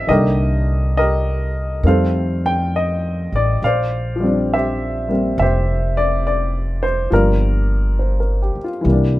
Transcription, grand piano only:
0.00 0.10 E5 medium
0.07 1.82 D#3 soft
0.07 1.83 G3 soft
0.07 1.85 A#3 soft
0.07 0.98 G4 medium
0.07 0.97 A#4 medium
0.07 0.96 D#5 medium
0.12 1.85 D3 soft
0.97 1.81 G4 soft
0.97 1.81 A#4 medium
0.97 1.87 D#5 medium
1.84 3.60 D#3 soft
1.84 3.61 G3 soft
1.84 3.61 A3 soft
1.84 3.61 C4 soft
1.84 2.45 F5 medium
1.88 3.59 A4 medium
1.88 3.59 C5 soft
2.46 2.74 G5 medium
2.76 3.29 D#5 medium
3.36 3.64 D5 medium
3.64 4.53 C5 medium
3.64 5.36 D5 medium
3.64 4.53 F5 medium
4.16 7.09 F3 soft
4.20 5.07 G3 soft
4.20 5.10 C4 soft
4.27 7.12 D4 medium
4.54 5.40 G4 soft
4.54 5.41 C5 soft
4.54 5.38 E5 medium
5.09 7.10 G3 soft
5.09 7.12 A#3 soft
5.09 7.13 C4 soft
5.39 7.09 G4 soft
5.39 6.81 C5 medium
5.39 5.98 E5 medium
5.97 6.23 D5 medium
6.27 6.85 D5 medium
6.83 7.09 C5 medium
7.10 8.84 F3 medium
7.10 8.83 G3 soft
7.10 8.86 A#3 soft
7.10 8.82 D4 medium
7.10 8.63 F4 soft
7.10 8.19 A#4 medium
7.99 8.39 C5 soft
8.20 8.57 A#4 soft
8.42 8.69 G4 soft
8.64 8.94 F4 soft
8.81 9.20 E3 medium
8.81 9.20 G3 soft
8.88 9.20 A#3 soft
8.88 9.20 D4 medium

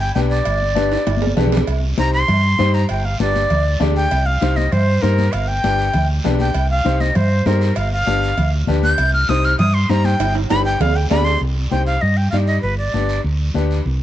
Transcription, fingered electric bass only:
0.16 0.40 B1 medium
0.46 0.95 G1 loud
1.07 1.31 G1 medium
1.37 1.62 B1 medium
1.68 1.92 C2 medium
1.98 2.23 C2 medium
2.29 2.53 G2 loud
2.60 2.84 G2 loud
2.90 3.14 G1 loud
3.20 3.44 G1 medium
3.50 3.75 D2 loud
3.81 4.05 D2 medium
4.12 4.36 C2 loud
4.42 4.66 C2 medium
4.73 4.97 G2 loud
5.03 5.28 G2 medium
5.34 5.58 G1 loud
5.64 5.88 G1 medium
5.94 6.19 D2 medium
6.25 6.49 B1 medium
6.55 6.79 C2 loud
6.86 7.10 C2 medium
7.16 7.40 G2 loud
7.46 7.71 G2 loud
7.77 8.01 G1 medium
8.07 8.32 G1 medium
8.38 8.62 D2 medium
8.68 8.93 D2 loud
8.99 9.23 C2 loud
9.29 9.53 C2 medium
9.59 9.84 G2 loud
9.89 10.14 G2 loud
10.20 10.44 G1 loud
10.50 10.75 G1 medium
10.80 11.05 D2 loud
11.11 11.35 D2 loud
11.41 11.66 C2 medium
11.72 11.96 C2 medium
12.03 12.27 G2 medium
12.33 12.57 G2 medium
12.63 12.88 G1 medium
12.94 13.18 G1 medium
13.24 13.49 D2 medium
13.55 13.80 D2 medium
13.86 14.03 C2 medium

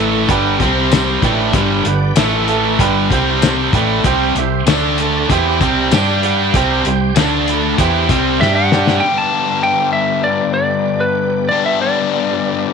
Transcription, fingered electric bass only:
0.00 0.26 A1 medium
0.29 0.58 G1 medium
0.60 1.19 C2 loud
1.22 1.52 A1 loud
1.53 1.83 G1 loud
1.85 2.15 G1 medium
2.16 2.75 A1 medium
2.78 3.08 G1 loud
3.10 3.69 C2 medium
3.73 4.02 A1 loud
4.04 4.33 C2 loud
4.35 4.64 C2 medium
4.67 5.25 D2 medium
5.29 5.59 E2 loud
5.61 5.90 C2 medium
5.92 6.50 G2 loud
6.54 6.83 C2 medium
6.86 7.15 C2 medium
7.16 7.75 D2 medium
7.78 8.08 E2 loud
8.09 8.39 C2 medium
8.40 8.99 G2 loud

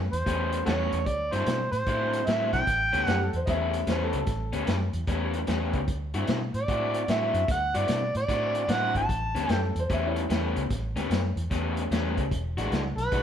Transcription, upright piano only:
3.10 3.21 G4 medium
3.23 3.35 A4 medium
3.36 3.48 C5 medium
3.46 3.48 D#5 medium
3.46 3.87 E5 loud
3.90 4.01 C5 medium
4.03 4.15 A4 medium
4.16 4.54 A4 medium
9.52 9.77 A4 medium
9.80 9.91 C5 medium
9.93 10.05 E5 medium
10.07 10.43 E4 medium
10.07 10.45 C#5 medium

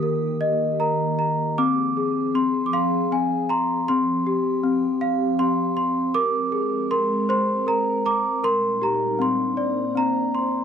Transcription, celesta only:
0.00 1.19 G4 medium
0.00 0.79 A#4 medium
0.00 0.76 D#6 medium
0.41 1.58 D#5 medium
0.80 1.58 A#4 medium
0.80 1.18 A#5 medium
1.19 1.58 A#5 medium
1.58 2.33 C4 medium
1.58 2.31 D6 medium
1.97 3.50 G#4 medium
2.34 3.10 C4 medium
2.34 2.67 C6 medium
2.66 2.73 D6 medium
2.73 3.88 F5 medium
2.73 3.13 C6 medium
3.12 3.88 C4 medium
3.12 3.48 G#5 medium
3.49 3.85 A#5 medium
3.49 3.87 C6 medium
3.88 4.62 C4 medium
3.88 5.38 C6 medium
4.27 5.77 G4 medium
4.64 5.38 C4 medium
5.01 6.14 F5 medium
5.39 6.14 C4 medium
5.39 5.75 C6 medium
5.77 6.14 C6 medium
6.14 6.90 A#4 medium
6.14 6.86 D6 loud
6.52 8.05 G#4 medium
6.91 7.66 A#4 medium
6.91 7.29 C6 medium
7.29 8.43 C5 medium
7.29 7.65 C6 medium
7.67 8.42 A#4 medium
7.67 8.03 A#5 medium
8.06 8.43 A#5 medium
8.06 8.41 D6 medium
8.44 9.20 A#4 medium
8.44 8.83 C6 loud
8.82 9.20 G4 medium
8.82 9.22 A#5 medium
9.19 9.94 C4 medium
9.19 10.00 C6 medium
9.57 10.64 D5 medium
9.95 10.64 C4 medium
9.95 10.64 A#5 medium
10.35 10.64 C6 medium

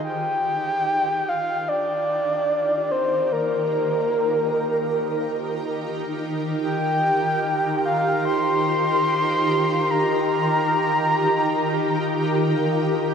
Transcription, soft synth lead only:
0.03 1.30 G5 loud
1.29 1.70 F5 loud
1.68 2.93 D5 loud
2.91 3.34 C5 medium
3.32 5.79 A#4 medium
6.63 7.82 G5 loud
7.86 8.24 F5 medium
8.25 9.92 C6 loud
9.91 12.37 A#5 loud

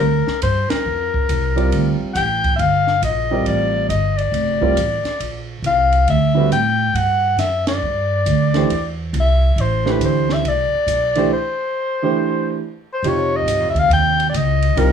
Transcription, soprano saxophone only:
0.00 0.39 A#4 medium
0.43 0.71 C5 medium
0.70 2.00 A#4 medium
2.13 2.18 F#5 medium
2.13 2.55 G5 medium
2.56 2.61 E5 medium
2.56 3.03 F5 medium
3.05 3.48 D#5 medium
3.47 3.89 D5 medium
3.90 4.19 D#5 medium
4.18 5.49 D5 medium
5.67 6.06 F5 medium
6.10 6.50 E5 medium
6.53 6.97 G5 medium
6.96 7.39 F#5 medium
7.39 7.65 E5 medium
7.68 8.94 D5 medium
9.20 9.62 E5 loud
9.61 9.92 C5 medium
9.90 10.03 B4 medium
10.05 10.35 C5 medium
10.33 10.50 E5 medium
10.48 11.33 D5 medium
11.33 12.58 C5 medium
12.94 13.10 C5 medium
13.09 13.38 C#5 medium
13.36 13.69 D#5 medium
13.70 13.81 E5 medium
13.79 13.93 F5 medium
13.93 14.28 G5 loud
14.30 14.38 D5 medium
14.37 14.80 D#5 medium
14.78 14.92 A#4 medium

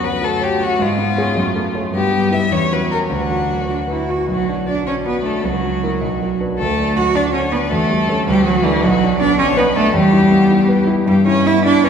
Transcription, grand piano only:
0.00 0.76 F#2 medium
0.00 0.34 C#4 medium
0.00 0.15 F#4 medium
0.22 0.53 F#4 medium
0.41 0.72 C#5 medium
0.60 0.80 F#4 medium
0.79 1.35 G#2 medium
0.98 1.29 B3 medium
1.18 1.35 C#4 medium
1.18 1.35 G#4 medium
1.36 1.92 F#2 medium
1.55 1.86 A3 medium
1.75 1.92 C#4 medium
1.75 1.92 A4 medium
1.93 2.50 G2 medium
2.13 2.44 G3 medium
2.31 2.49 E4 soft
2.31 2.49 B4 medium
2.51 3.08 E2 medium
2.71 3.02 F#3 soft
2.91 3.09 F#4 soft
2.91 3.09 A#4 medium
3.10 4.25 D2 medium
3.31 3.62 F#4 soft
3.50 3.82 F#3 soft
3.69 4.01 F#4 soft
3.88 4.20 B4 soft
4.08 4.28 F#4 soft
4.28 5.40 B1 medium
4.49 4.79 D4 soft
4.68 4.98 F#3 medium
4.86 5.17 D4 medium
5.06 5.37 F#4 medium
5.24 5.44 D4 medium
5.44 6.00 C#2 medium
5.63 5.94 F#3 soft
5.83 6.00 E4 soft
5.83 6.00 A#4 medium
6.01 6.56 B1 medium
6.21 6.51 F#3 medium
6.40 6.57 D4 soft
6.40 6.57 B4 medium
6.59 7.68 D2 medium
6.78 7.08 D4 medium
6.97 7.27 F#3 medium
7.14 7.44 D4 medium
7.33 7.63 F#4 medium
7.52 7.71 D4 medium
7.71 8.25 E2 medium
7.90 8.19 G3 medium
8.08 8.25 C#4 medium
8.08 8.25 A4 medium
8.27 8.81 D2 medium
8.45 8.75 F#3 medium
8.64 8.81 D4 medium
8.64 8.81 A4 medium
8.84 9.92 B1 medium
9.02 9.32 D4 medium
9.21 9.50 B3 medium
9.39 9.69 D4 medium
9.56 9.87 B4 medium
9.77 9.95 D4 medium
9.94 11.03 E2 medium
10.13 10.43 E4 medium
10.31 10.62 B3 medium
10.51 10.81 E4 medium
10.68 10.99 B4 medium
10.87 11.07 E4 medium
11.06 11.89 G2 medium
11.27 11.57 E4 medium
11.45 11.76 B3 medium
11.65 11.89 E4 medium
11.84 11.89 B4 medium

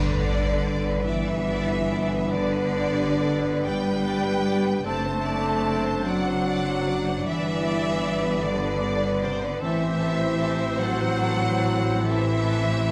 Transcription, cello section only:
0.00 1.04 D3 medium
1.08 2.31 E3 medium
2.32 3.64 D3 medium
3.65 4.85 G3 medium
4.86 6.07 A3 medium
6.07 7.24 F#3 medium
7.26 8.45 E3 medium
8.46 9.23 D3 medium
9.24 9.43 C3 medium
9.43 9.62 D3 medium
9.62 10.78 E3 medium
10.81 12.03 F#3 medium
12.04 12.91 E3 medium

